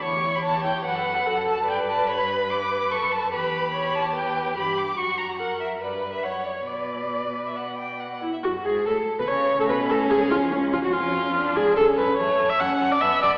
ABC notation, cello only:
X:1
M:4/4
L:1/16
Q:1/4=145
K:Bm
V:1 name="Cello" clef=bass
E,,4 E,,4 F,,4 F,,4 | G,,12 F,,4 | E,,12 G,,4 | F,,8 G,,4 F,,4 |
B,,12- B,,2 z2 | [K:F#m] F,,2 G,,2 A,,3 B,, C,3 A,, B,,2 A,,2 | G,,2 ^E,,2 C,,2 E,, F,, E,,6 G,,2 | F,,2 F,,2 F,,2 F,,2 F,,2 F,,2 F,,2 F,,2 |]